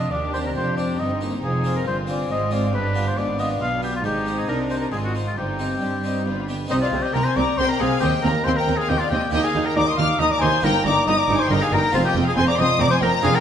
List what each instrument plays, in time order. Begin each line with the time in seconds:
Already playing: double bass section F1, cello section F2, viola section D4, violin section F4 D5, oboe D#5
0.11 double bass section D#2, cello section D#2, harpsichord D#2, violin section G4 G5, oboe D5
0.33 harpsichord C4 G4, oboe C5
0.46 oboe A#4
0.55 double bass section F1, cello section F2, harpsichord F2, violin section G4 G5, oboe C5
0.77 harpsichord C4 G4, oboe D5
0.98 double bass section G1, harpsichord G2, cello section G2, viola section C4, violin section D#4, oboe D#5
1.20 viola section A#3, harpsichord C4 G4
1.42 double bass section F1, cello section F2, harpsichord F2, viola section C4, oboe G#4, violin section G#5
1.64 harpsichord C4 D4 F4
1.76 oboe A#4
1.85 double bass section G1, harpsichord G2, cello section G2, violin section F4 G#5, oboe C5
2.07 harpsichord C4 D4 F4, oboe D5
2.29 double bass section G#1, harpsichord G#2, cello section G#2, viola section C4, violin section F4, oboe D#5
2.51 harpsichord C4 D4 F4, oboe D5
2.72 double bass section G1, cello section G2, harpsichord G2, viola section D4, violin section G4 G5, oboe B4
2.95 harpsichord B3 D4 F4
3.07 oboe C5
3.16 double bass section G#1, cello section G#2, harpsichord G#2, viola section B3, violin section D4 F5, oboe D5
3.39 harpsichord B3 D4 F4, oboe D#5
3.60 double bass section B1, cello section B2, harpsichord B2, oboe F5
3.82 harpsichord B3 D4 F4, oboe G4
3.96 oboe F4
4.03 double bass section G#1, cello section G#2, harpsichord G#2 G#3, viola section D#4, violin section D#4 D#5, oboe G4
4.26 harpsichord C4 D#4
4.38 oboe G#4
4.47 double bass section C2, harpsichord C3, cello section C3, viola section D4, oboe A#4
4.70 harpsichord C4 D#4, oboe C5
4.81 oboe A#4
4.91 double bass section G#1, cello section G#2, harpsichord G#2 G#3, viola section C4, violin section F4 D#5, oboe G#4
5.04 oboe F#4
5.15 harpsichord C4 D#4
5.27 oboe F4
5.36 double bass section G1, cello section G2, harpsichord G2, viola section C4, violin section D#4 G5, oboe G4
5.59 harpsichord C4 D#4 G4
5.80 double bass section G2, cello section G3, harpsichord G3, violin section D4
6.04 harpsichord C4 D#4 G4
6.16 violin section D#4
6.25 double bass section G1, cello section G2, harpsichord G2, viola section B3, violin section F4 B5
6.48 harpsichord B3 D4 G4, violin section G4
6.66 double bass section C2, cello section C3, harpsichord C4 D#4 G4
6.70 harpsichord C3, viola section C4, oboe D#4, violin section C5 D#5
6.81 oboe F4, violin section D5 F5
6.92 double bass section C2, cello section C3, harpsichord C3, viola section C4
7.02 oboe G4, violin section D#5 G5
7.13 double bass section C2, cello section C3, harpsichord C3, viola section C4, oboe A#4, violin section G5 A#5
7.24 oboe C5, violin section G#5 C6
7.36 double bass section C2, cello section C3, harpsichord C3, viola section C4, oboe D5, violin section A#5 D6
7.58 double bass section C2, cello section C3, harpsichord C3, viola section C4, oboe C5, violin section G5 C6
7.68 oboe A#4, violin section G5 A#5
7.80 double bass section C2, harpsichord C3, cello section C3, viola section C4, oboe G#4, violin section F5 G#5
7.98 harpsichord C4 D#4 G4, viola section C4, oboe G4
8.02 harpsichord D#2, cello section D#2, double bass section D#2, violin section D#5 G5
8.22 double bass section D#2, harpsichord D#2, cello section D#2, viola section C4, oboe A#4, violin section A#5
8.26 violin section G5
8.44 harpsichord D#2, cello section D#2, double bass section D#2, viola section C4, oboe C5, violin section G5 C6
8.56 oboe A#4, violin section G5 A#5
8.67 cello section D#2, double bass section D#2, harpsichord D#2, viola section C4
8.76 oboe G#4, violin section F5
8.81 violin section G#5
8.89 cello section D#2, double bass section D#2, harpsichord D#2, viola section C4, oboe G4, violin section D#5 G5
8.98 oboe F4, violin section D5 F5
9.10 double bass section D#2, cello section D#2, harpsichord D#2, viola section C4, oboe G4, violin section D#5 G5
9.30 double bass section D#2, cello section D#2, harpsichord A#3 D#4 G4, viola section D#4, oboe G4, violin section G5
9.34 harpsichord D#2, violin section D#5
9.42 oboe G#4, violin section F5 G#5
9.54 double bass section D#2, cello section D#2, harpsichord D#2, viola section D#4
9.65 oboe A#4, violin section G5 A#5
9.76 double bass section D#2, cello section D#2, harpsichord D#2, viola section D#4, oboe D5, violin section A#5 D6
9.87 oboe D#5, violin section C6 D#6
9.97 double bass section D#2, harpsichord D#2, cello section D#2, viola section D#4, oboe F5, violin section D6 F6
10.20 double bass section D#2, cello section D#2, harpsichord D#2, viola section D#4, oboe D#5, violin section A#5 D#6
10.31 oboe D5, violin section A#5 D6
10.41 double bass section D#2, cello section D#2, harpsichord D#2, viola section D#4, oboe C5, violin section G#5 C6
10.60 double bass section G1, cello section G2, harpsichord A#3 D#4 G4, viola section D#4, violin section G5
10.64 harpsichord G2, oboe A#4, violin section A#5
10.85 double bass section G1, cello section G2, harpsichord G2, viola section D#4, oboe D5, violin section A#5 D6
11.06 double bass section G1, cello section G2, harpsichord G2, viola section D#4, oboe D#5, violin section A#5 D#6
11.17 oboe D5, violin section A#5 D6
11.28 double bass section G1, cello section G2, harpsichord G2, viola section D#4
11.39 oboe C5, violin section G#5 C6
11.49 double bass section G1, cello section G2, harpsichord G2, viola section D#4, oboe A#4, violin section G5 A#5
11.62 oboe G#4, violin section F5 G#5
11.71 double bass section G1, cello section G2, harpsichord G2, viola section D#4, oboe A#4, violin section G5 A#5
11.90 double bass section F1, cello section F2, harpsichord C4 F4 G#4, viola section C4, oboe F4, violin section C5 F5
11.94 harpsichord F2
12.04 oboe G4, violin section D#5 G5
12.15 double bass section F1, cello section F2, harpsichord F2, viola section C4
12.26 oboe G#4, violin section F5 G#5
12.36 double bass section F1, cello section F2, harpsichord F2, viola section C4, oboe C5, violin section G#5 C6
12.47 oboe D5, violin section A#5 D6
12.58 double bass section F1, cello section F2, harpsichord F2, viola section C4, oboe D#5, violin section C6 D#6
12.80 double bass section F1, cello section F2, harpsichord F2, viola section C4, oboe D5, violin section A#5 D6
12.90 oboe C5, violin section G#5 C6
13.01 double bass section F1, cello section F2, harpsichord F2, viola section C4, oboe A#4, violin section G5 A#5
13.21 double bass section F1, cello section F2, harpsichord D4 F4 G#4, viola section D4, oboe G#4, violin section F5
13.25 harpsichord F2, violin section G#5
13.34 oboe A#4, violin section G5